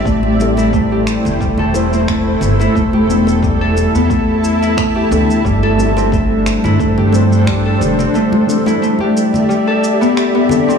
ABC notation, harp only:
X:1
M:4/4
L:1/16
Q:"Swing 16ths" 1/4=89
K:Am
V:1 name="Harp"
A,3 E A, G z2 G, A z C A,3 E | A, G z2 G, A z B, A,3 E A, G z2 | G, A z C A,3 E A, G z2 G, A z C | A,3 E A, G z2 G, A z B, G B, D C |]